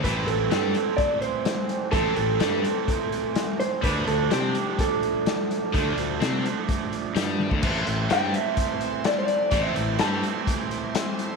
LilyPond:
<<
  \new Staff \with { instrumentName = "Clean electric guitar" } { \time 4/4 \key a \minor \tempo 4 = 126 b'8 a'4. d''8 c''4. | a'8 a'2. c''8 | b'8 a'8 g'4 a'2~ | a'2. r4 |
r4 g''8 e''4. d''16 d''8.~ | d''16 e''8. a''8 r2 r8 | }
  \new Staff \with { instrumentName = "Tonewheel organ" } { \time 4/4 \key a \minor r1 | r1 | r1 | r1 |
<a c' e' c''>1~ | <a c' e' c''>1 | }
  \new Staff \with { instrumentName = "Overdriven electric guitar" } { \time 4/4 \key a \minor <e a c'>1 | <e a c'>1 | <f a d'>1 | <f a d'>1 |
<e a c'>1 | <e a c'>1 | }
  \new Staff \with { instrumentName = "Distorted electric guitar" } { \clef bass \time 4/4 \key a \minor a,8 a,8 g8 r2 r8 | a,8 a,8 g8 r2 r8 | d8 d8 c'8 r2 r8 | d8 d8 c'8 r4. g8. d16 |
a,8 a,8 g8 r2 r8 | a,8 a,8 g8 r2 r8 | }
  \new Staff \with { instrumentName = "Fingered electric bass" } { \clef bass \time 4/4 \key a \minor a,,8 a,,8 g,8 r2 r8 | a,,8 a,,8 g,8 r2 r8 | d,8 d,8 c8 r2 r8 | d,8 d,8 c8 r4. g,8. d,16 |
a,,8 a,,8 g,8 r2 r8 | a,,8 a,,8 g,8 r2 r8 | }
  \new DrumStaff \with { instrumentName = "Drums" } \drummode { \time 4/4 <hh bd>8 hh8 <hh sn>8 hh8 <hh bd>8 hh8 <hh sn>8 hh8 | <hh bd>8 hh8 <hh sn>8 hh8 <hh bd>8 hh8 <hh sn>8 hh8 | <hh bd>8 hh8 <hh sn>8 hh8 <hh bd>8 hh8 <hh sn>8 hh8 | <hh bd>8 hh8 <hh sn>8 hh8 <hh bd>8 hh8 <hh sn>8 tommh16 bd16 |
<cymc bd>8 hh8 <hh sn>8 hh8 <hh bd>8 hh8 <hh sn>8 hh8 | <hh bd>8 hh8 <hh sn>8 hh8 <hh bd>8 hh8 <hh sn>8 hh8 | }
>>